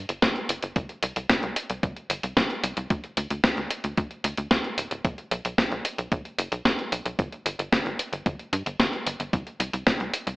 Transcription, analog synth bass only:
0.09 G1
0.23 G1
0.49 G1
0.63 G1
0.76 C2
1.03 C2
1.16 C2
1.30 C2
1.43 C2
1.70 C2
1.83 C2
2.10 G1
2.23 C2
2.37 C2
2.64 C2
2.77 C2
2.90 D2
3.17 D2
3.31 D2
3.44 D2
3.57 D2
3.84 D2
3.98 D2
4.24 D2
4.38 D2
4.51 D2
4.78 D1
4.91 D1
5.05 B1
5.31 B1
5.45 B1
5.58 B1
5.72 B1
5.98 B1
6.12 B1
6.39 F#1
6.52 B1
6.65 B1
6.92 B1
7.05 B1
7.19 G1
7.46 G1
7.59 G1
7.72 G1
7.86 G1
8.13 G1
8.26 G1
8.53 G2
8.66 G1
8.80 G1
9.06 G1
9.20 G1
9.33 C2
9.60 C2
9.73 C2
9.87 C2
10.00 C2
10.27 C2

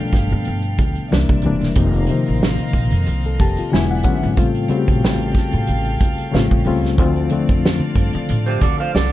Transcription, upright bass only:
0.13 G1
0.32 G2
0.47 G1
0.80 D2
1.12 C2
1.30 C2
1.45 E1
1.77 F1
2.28 A1
2.74 A#1
2.92 F2
3.07 C2
3.40 F1
3.73 E1
4.23 G#1
4.38 A1
4.89 A#1
5.03 A1
5.54 A2
5.69 A1
6.01 C#2
6.34 A1
6.52 A1
6.66 C#2
6.99 D2
7.50 F2
7.96 G2
8.15 D3
8.30 A2
8.62 D2
8.95 C2

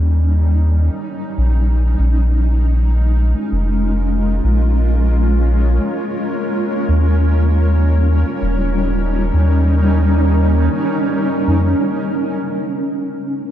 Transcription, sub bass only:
Already playing: D#2
1.38 A#1
1.99 A#1
3.52 F1
4.44 A#1
6.89 D#2
8.42 D#1
9.33 D#2
11.47 F2

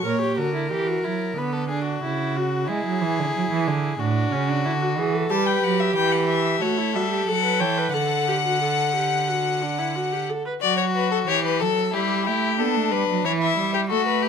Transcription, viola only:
0.06 A#4
0.22 G4
0.38 F#4
0.55 E4
0.72 G4
0.88 F#4
1.04 E4
1.38 B3
1.70 D4
2.04 E4
2.37 F#4
2.69 E4
4.00 D4
4.32 C#4
4.49 D4
4.65 E4
4.82 F#4
4.97 G#4
5.14 A4
5.30 G4
6.61 F#4
6.77 E4
6.94 F#4
7.12 G4
7.28 A4
7.44 B4
7.60 C#5
7.78 B4
7.94 A4
8.28 G4
8.45 F#4
8.62 A4
8.95 G4
9.29 F#4
9.62 D4
9.79 E4
9.96 F#4
10.12 G4
10.29 A4
10.46 B4

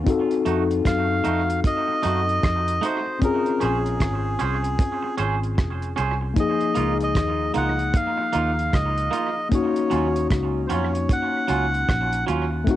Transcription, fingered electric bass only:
0.47 F2
0.86 F#2
1.26 F2
2.05 F#2
2.44 F2
3.63 A#1
4.01 G#1
4.41 C2
5.19 G#1
5.59 F1
5.99 C2
6.77 C#2
7.16 D#2
7.56 C#2
8.35 D#2
8.74 C#2
9.92 D#2
10.31 C#2
10.71 F2
11.50 C#2
11.89 A#1
12.29 D#2

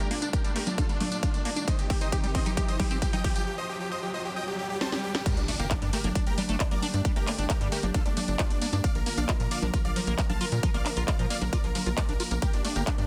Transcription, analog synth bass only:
5.37 G1
5.59 G1
5.82 G2
6.04 G1
6.27 G1
6.49 G1
6.71 G1
6.94 G2
7.16 G1
7.39 G1
7.61 G2
7.83 G1
8.06 G1
8.28 G1
8.50 G1
8.73 G2
8.95 A#1
9.18 A#1
9.40 A#2
9.63 A#1
9.85 A#1
10.07 A#1
10.30 A#1
10.52 A#2
10.74 A#1
10.97 A#1
11.19 A#2
11.42 A#1
11.64 A#1
11.86 A#1
12.09 A#1
12.31 A#1
12.53 G1
12.76 G1
12.98 G2

